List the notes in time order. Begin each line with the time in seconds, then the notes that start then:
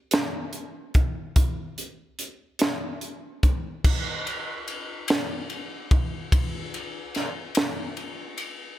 0.11 snare, closed hi-hat
0.53 closed hi-hat
0.94 kick, closed hi-hat
1.36 kick, closed hi-hat
1.78 closed hi-hat
2.19 closed hi-hat
2.59 snare, closed hi-hat
3.01 closed hi-hat
3.43 kick, closed hi-hat
3.84 kick, crash
4.27 ride
4.68 ride
5.08 snare, ride
5.50 ride
5.91 kick, ride
6.32 kick, ride
6.74 ride
7.15 snare, ride
7.55 snare, ride
7.97 ride
8.38 ride